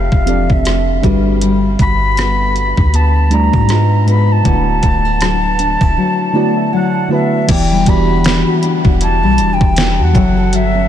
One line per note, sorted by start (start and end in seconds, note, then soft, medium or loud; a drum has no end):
0.00 0.10 F1 loud
0.00 0.25 F3 medium
0.00 1.03 F3 medium
0.00 0.65 A3 medium
0.00 0.26 C4 medium
0.00 0.27 D4 medium
0.00 0.27 G4 medium
0.00 1.82 G4 medium
0.00 0.28 A4 medium
0.00 0.29 D5 medium
0.00 0.53 F5 medium
0.12 0.48 E1 loud
0.12 kick medium
0.25 0.93 F3 medium
0.25 0.94 C4 medium
0.25 1.79 D4 medium
0.25 0.94 G4 medium
0.25 0.95 A4 medium
0.25 0.95 D5 medium
0.25 closed hi-hat medium
0.50 1.01 F1 loud
0.50 1.05 E5 medium
0.50 kick loud
0.65 1.45 A3 medium
0.65 cross-stick loud
0.65 closed hi-hat medium
1.02 1.76 G1 loud
1.02 2.35 G3 medium
1.02 1.41 G3 medium
1.02 2.36 D4 medium
1.02 2.36 F#4 medium
1.02 2.37 A4 medium
1.02 2.37 B4 medium
1.02 kick loud
1.02 closed hi-hat soft
1.41 3.78 G3 medium
1.41 closed hi-hat medium
1.79 2.73 G1 loud
1.79 3.31 F#4 medium
1.79 2.97 B5 loud
1.79 kick loud
1.79 closed hi-hat medium
2.17 2.93 B3 medium
2.17 cross-stick loud
2.17 closed hi-hat medium
2.56 closed hi-hat medium
2.77 3.50 D2 medium
2.77 kick loud
2.94 4.07 B3 medium
2.94 3.35 A5 loud
2.94 closed hi-hat medium
3.30 3.69 G3 medium
3.30 3.70 A3 medium
3.30 3.68 D4 medium
3.30 3.53 E4 medium
3.30 3.69 F#4 medium
3.30 3.70 D5 medium
3.30 4.08 A#5 loud
3.30 closed hi-hat medium
3.53 4.42 G#2 loud
3.53 3.78 F#4 medium
3.53 kick loud
3.68 4.02 G#2 medium
3.68 4.54 G#2 medium
3.68 4.02 G#3 medium
3.68 4.03 D4 medium
3.68 4.03 F4 medium
3.68 4.04 B4 medium
3.68 cross-stick loud
3.68 closed hi-hat medium
4.06 4.40 G#2 medium
4.06 4.40 G#3 medium
4.06 4.83 B3 medium
4.06 4.41 D4 medium
4.06 4.41 F4 medium
4.06 4.42 B4 medium
4.06 4.33 B5 loud
4.06 closed hi-hat soft
4.32 6.74 A5 loud
4.43 4.82 D1 loud
4.43 5.77 D3 medium
4.43 7.48 D3 medium
4.43 5.77 A3 medium
4.43 5.78 E4 medium
4.43 4.53 F4 medium
4.43 5.79 B4 medium
4.43 kick loud
4.43 closed hi-hat medium
4.53 5.82 F#4 medium
4.83 5.77 D1 loud
4.83 5.05 A3 medium
4.83 kick loud
4.83 closed hi-hat medium
5.05 6.34 B3 medium
5.21 5.97 F#3 medium
5.21 cross-stick loud
5.21 closed hi-hat medium
5.59 5.81 D4 medium
5.59 closed hi-hat medium
5.81 5.96 D1 loud
5.81 7.58 E4 medium
5.81 kick loud
5.97 6.72 F#3 medium
6.33 7.01 D3 medium
6.33 7.01 A3 medium
6.33 7.10 B3 medium
6.33 7.02 E4 medium
6.33 7.02 F#4 medium
6.33 6.37 D5 medium
6.33 7.03 D5 medium
6.57 6.72 E5 medium
6.73 7.71 F#3 medium
6.73 6.93 F#5 medium
6.73 7.09 F#5 medium
6.95 7.45 A5 medium
7.08 7.43 D3 medium
7.08 7.44 A3 medium
7.08 7.87 B3 medium
7.08 7.44 E4 medium
7.08 7.45 F#4 medium
7.12 7.45 B4 loud
7.12 7.52 E5 medium
7.47 7.85 E1 loud
7.47 7.81 E3 medium
7.47 9.01 E3 medium
7.47 7.82 B3 medium
7.47 7.82 E4 medium
7.47 7.83 G4 medium
7.47 7.83 D5 medium
7.47 7.90 G5 loud
7.47 kick loud
7.47 closed hi-hat medium
7.47 crash medium
7.71 9.22 G3 medium
7.85 8.44 E1 loud
7.85 9.19 E3 medium
7.85 9.19 B3 medium
7.85 8.24 D4 medium
7.85 9.20 F#4 medium
7.85 9.20 G4 medium
7.85 9.21 D5 medium
7.85 8.64 B5 loud
7.85 kick loud
7.85 closed hi-hat medium
8.09 8.47 F#4 medium
8.24 8.62 D4 medium
8.24 snare loud
8.24 closed hi-hat medium
8.47 8.85 F#4 medium
8.63 9.38 D4 medium
8.63 closed hi-hat medium
8.85 9.25 E1 loud
8.85 9.99 F#4 medium
8.85 kick loud
9.01 10.56 E3 medium
9.01 9.55 A5 loud
9.01 closed hi-hat medium
9.23 9.41 B1 loud
9.23 10.15 G3 medium
9.38 9.60 E1 medium
9.38 9.76 D4 medium
9.38 closed hi-hat medium
9.53 10.05 G5 loud
9.61 10.00 E1 loud
9.61 kick loud
9.76 10.24 D4 medium
9.76 snare loud
9.76 closed hi-hat medium
9.99 10.14 E2 loud
9.99 10.88 F#4 medium
10.04 10.56 F#5 medium
10.13 10.54 F#1 loud
10.13 10.81 F#3 medium
10.13 10.52 F#3 medium
10.13 10.81 F#4 medium
10.13 10.82 A4 medium
10.13 10.82 C#5 medium
10.13 10.82 E5 medium
10.13 kick loud
10.13 closed hi-hat soft
10.37 10.88 A4 medium
10.53 10.88 G1 medium
10.53 10.88 F#3 medium
10.53 10.88 E5 loud
10.53 closed hi-hat medium
10.75 10.88 C#4 medium